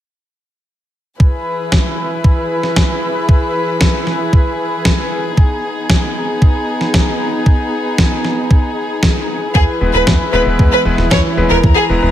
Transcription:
1.20 string section E3 E4 G#4 B4, kick
1.72 kick, snare
2.24 kick
2.63 snare
2.76 kick, snare
3.29 kick
3.81 kick, snare
4.07 snare
4.33 kick
4.85 kick, snare
5.37 string section B3 D#4, kick
5.90 kick, snare
6.42 kick
6.81 snare
6.94 kick, snare
7.46 kick
7.98 kick, snare
8.24 snare
8.51 kick
9.03 kick, snare
9.55 analog synth bass E2, string section E3 E4 B4, violin section G#4, kick
9.81 analog synth bass E1, electric grand piano G#3 B3 E4 B4
9.94 analog synth bass E1, electric grand piano G#3 B3 E4 B4, violin section B4
10.07 analog synth bass E2, kick, snare
10.33 analog synth bass E1, electric grand piano G#3 B3 E4 B4, violin section B4
10.46 analog synth bass E1
10.59 analog synth bass E2, kick
10.72 violin section B4
10.85 analog synth bass E1, electric grand piano G#3 B3 E4 B4
10.98 analog synth bass E1, snare
11.11 analog synth bass E2, violin section C#5, kick, snare
11.37 analog synth bass E1, electric grand piano G#3 B3 E4 B4
11.50 analog synth bass E1, violin section A#4
11.63 analog synth bass E2, string section A#5, kick
11.76 violin section G#4
11.89 analog synth bass E1, electric grand piano G#3 B3 E4 B4
12.02 analog synth bass E1, electric grand piano G#3 B3 E4 B4

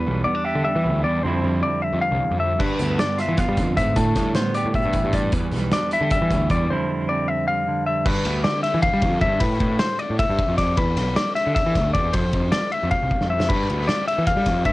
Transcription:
Already playing: clean electric guitar E2 E3 B3 B4
0.07 picked electric bass B1, clean electric guitar G3
0.24 clean electric guitar B3 D5
0.35 clean electric guitar D4
0.45 clean electric guitar G4 E5
0.55 picked electric bass D3
0.65 clean electric guitar G3 E5
0.76 picked electric bass E3
0.84 picked electric bass D2, clean electric guitar E3
1.03 picked electric bass E2, clean electric guitar G3 D5
1.23 clean electric guitar F2 D3 G3 C4 E4 C5, picked electric bass F2
1.44 picked electric bass F2, clean electric guitar G3
1.63 clean electric guitar C4 D5
1.82 clean electric guitar E5
1.93 picked electric bass F2
2.01 clean electric guitar F5
2.11 picked electric bass C2
2.21 clean electric guitar E2
2.31 picked electric bass F2
2.39 clean electric guitar F2 E5
2.58 clean electric guitar G2 B4, picked electric bass G2, kick, crash
2.79 picked electric bass D2, clean electric guitar B3, closed hi-hat
2.97 clean electric guitar D4 D5, snare, closed hi-hat
3.18 clean electric guitar F4 E5, snare, closed hi-hat
3.28 picked electric bass E3
3.37 clean electric guitar B3 F5, kick, snare, closed hi-hat
3.48 picked electric bass G3
3.57 picked electric bass F2, clean electric guitar D3, kick, closed hi-hat
3.77 picked electric bass G#2, clean electric guitar B3 E5, kick, closed hi-hat
3.96 picked electric bass A2, clean electric guitar A2 A4, kick, closed hi-hat
4.15 picked electric bass A2, clean electric guitar G3, kick, snare, closed hi-hat
4.35 clean electric guitar B3 C5, snare, closed hi-hat
4.54 clean electric guitar G4 D5, closed hi-hat
4.65 picked electric bass A2
4.74 clean electric guitar G3 E5, kick, closed hi-hat
4.85 picked electric bass G2
4.93 clean electric guitar E3, kick, closed hi-hat
5.04 picked electric bass G2
5.13 clean electric guitar G3 D5, kick, closed hi-hat
5.32 picked electric bass E2, clean electric guitar E2 B4, kick, closed hi-hat
5.51 picked electric bass B1, snare, closed hi-hat
5.56 clean electric guitar G3
5.71 clean electric guitar D4 D5, snare, closed hi-hat
5.91 clean electric guitar E4 E5, closed hi-hat
6.01 picked electric bass D3, clean electric guitar G4
6.10 clean electric guitar G3 E5, kick, closed hi-hat
6.21 picked electric bass E3
6.30 picked electric bass D2, clean electric guitar E3, kick, closed hi-hat
6.50 picked electric bass E2, clean electric guitar G3 D5, kick, closed hi-hat
6.70 clean electric guitar F2 D3 G3 C4 E4 C5
6.90 clean electric guitar G3
7.09 clean electric guitar C4 D5
7.28 clean electric guitar E5
7.48 clean electric guitar G3 F5
7.67 clean electric guitar D3
7.86 clean electric guitar G3 E5
8.06 picked electric bass G2, clean electric guitar B4, kick, crash
8.25 picked electric bass D2, ride
8.44 clean electric guitar D5, snare, ride
8.63 clean electric guitar E5, snare, ride
8.74 picked electric bass E3
8.83 clean electric guitar F5, kick, ride
8.94 picked electric bass G3
9.02 picked electric bass F2, kick, ride
9.21 picked electric bass G2, clean electric guitar E5, kick, ride
9.40 picked electric bass A2, clean electric guitar B4, kick, ride
9.60 picked electric bass A2, kick, ride
9.79 clean electric guitar C5, snare, ride
9.99 clean electric guitar D5, ride
10.10 picked electric bass A2
10.19 clean electric guitar E5, kick, ride
10.29 picked electric bass G2
10.39 kick, ride
10.48 picked electric bass F2
10.58 clean electric guitar D5, kick, snare, ride
10.77 picked electric bass E2, clean electric guitar B4, kick, ride
10.97 picked electric bass B1, snare, ride
11.16 clean electric guitar D5, snare, ride
11.35 clean electric guitar E5, snare, ride
11.47 picked electric bass D3
11.55 clean electric guitar E5, kick, snare, ride
11.66 picked electric bass E3
11.75 picked electric bass D2, kick, snare, ride
11.93 picked electric bass E2, clean electric guitar D5, kick, ride
12.13 picked electric bass F2, clean electric guitar C5, kick, ride
12.33 picked electric bass F2, kick, ride
12.52 clean electric guitar D5, snare, ride
12.72 clean electric guitar E5, ride
12.83 picked electric bass F2
12.91 clean electric guitar F5, kick, snare, ride
13.03 picked electric bass C2
13.11 kick, ride
13.21 picked electric bass F2, snare
13.30 clean electric guitar E5
13.40 snare
13.49 picked electric bass G2, clean electric guitar B4, kick, crash
13.70 picked electric bass D2, snare, ride
13.87 clean electric guitar D5, snare, ride
14.08 clean electric guitar E5, ride
14.18 picked electric bass E3
14.27 clean electric guitar F5, kick, snare, ride
14.37 picked electric bass G3
14.46 picked electric bass F2, kick, snare, ride
14.65 picked electric bass G2, clean electric guitar E5, kick, ride

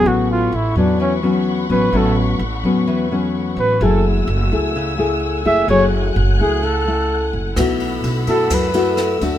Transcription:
Already playing: nylon-string guitar F#3 B3 C#4
0.05 upright bass A1, nylon-string guitar A2, string section A3 F#5 B5 C#6, flugelhorn F#4
0.31 flugelhorn F4
0.52 upright bass A1, flugelhorn E4
0.75 upright bass E2, nylon-string guitar F#3 B3 C#4, flugelhorn D4
1.00 nylon-string guitar E3, flugelhorn C#4
1.23 nylon-string guitar F#3 B3 C#4
1.70 upright bass A1, nylon-string guitar F#3 B3 C#4, flugelhorn B4
1.93 upright bass A1, nylon-string guitar A2 F#3 B3 C#4, flugelhorn A4
2.39 upright bass A1
2.64 upright bass E2, nylon-string guitar F#3 B3 C#4
2.87 nylon-string guitar E3
3.11 nylon-string guitar F#3 B3 C#4
3.57 upright bass A1, flugelhorn B4
3.81 upright bass F#1, nylon-string guitar F#3 A3 E4 G#4, flugelhorn A4, string section F#5 G#5 E6
4.27 upright bass F#1
4.52 upright bass C#2, nylon-string guitar A3 E4 G#4
4.76 nylon-string guitar C#3
4.98 nylon-string guitar A3 E4 G#4
5.45 upright bass F#1, nylon-string guitar A3 E4 G#4, flugelhorn E5
5.68 upright bass F#1, nylon-string guitar F#3 A3 E4 G#4, flugelhorn C#5, string section F#6
6.16 upright bass F#1
6.39 upright bass C#2, nylon-string guitar A3 E4 G#4, flugelhorn G#4
6.63 nylon-string guitar C#3, flugelhorn A4
6.88 nylon-string guitar A3 E4
7.33 upright bass F#1
7.56 upright bass B1, nylon-string guitar B2 A3 E4 F#4, string section A4 B5 E6, kick, cross-stick, ride
7.80 ride
8.04 upright bass B1, ride
8.27 upright bass F#2, nylon-string guitar A3 E4 F#4, flugelhorn A4, ride
8.50 nylon-string guitar F#2, kick, cross-stick, ride
8.54 flugelhorn B4
8.74 nylon-string guitar A3 E4 F#4, ride
8.97 cross-stick, ride
9.21 upright bass D2, nylon-string guitar A3 D4 F#4, ride

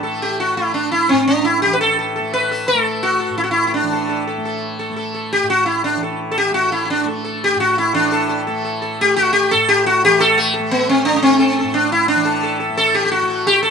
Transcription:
Already playing: tanpura A2 E3 A3
0.03 tanpura A3, sitar A4
0.22 sitar G4
0.40 sitar F#4
0.57 tanpura A3, sitar E4
0.74 sitar D4
0.92 sitar E4
1.09 tanpura A2, sitar C4
1.27 sitar D4
1.44 sitar E4
1.62 tanpura E3, sitar G4
1.73 sitar B4
1.81 sitar A4
1.99 sitar A4
2.16 tanpura A3, sitar A4
2.34 sitar B4
2.51 sitar A4
2.68 sitar A4
2.75 tanpura A3
3.03 sitar F#4
3.20 sitar A4
3.30 tanpura A2
3.38 sitar E4
3.44 sitar F#4
3.51 sitar E4
3.67 sitar E4
3.74 sitar D4
3.83 tanpura E3
3.93 sitar A4
4.09 sitar A4
4.27 sitar A4
4.38 tanpura A3
4.45 sitar A4
4.79 sitar A4
4.90 tanpura A3
4.96 sitar A4
5.14 sitar A4
5.33 sitar G4
5.43 tanpura A2
5.50 sitar F#4
5.66 sitar E4
5.84 sitar D4
5.96 tanpura E3
6.03 sitar A4
6.31 sitar A4
6.38 sitar G4
6.51 tanpura A3, sitar F#4
6.72 sitar E4
6.85 sitar E4
6.90 sitar D4
7.05 tanpura A3, sitar A4
7.25 sitar A4
7.44 sitar G4
7.56 tanpura A2, sitar F#4
7.78 sitar E4
7.94 tanpura E3, sitar D4 A4
8.12 sitar A4
8.29 sitar A4
8.47 tanpura A3, sitar A4
8.64 sitar A4
8.82 sitar A4
9.01 tanpura A3, sitar G4
9.16 sitar F#4
9.33 sitar G4
9.51 tanpura A2, sitar A4
9.68 sitar G4
9.86 sitar F#4
10.05 tanpura E3, sitar G4
10.20 sitar A4
10.38 sitar A3
10.54 sitar A4
10.59 tanpura A3
10.71 sitar B3
10.89 sitar C4
11.05 sitar D4
11.13 tanpura A3, sitar D4
11.22 sitar C4
11.39 sitar A4
11.59 sitar A4
11.64 tanpura A2
11.74 sitar D4
11.92 sitar E4
12.08 sitar D4
12.15 tanpura E3
12.25 sitar A4
12.43 sitar A4
12.60 sitar A4
12.70 tanpura A3
12.77 sitar A4
12.94 sitar G4
13.05 sitar G4
13.12 sitar F#4
13.22 tanpura A3
13.30 sitar A4
13.47 sitar G4
13.63 sitar A4

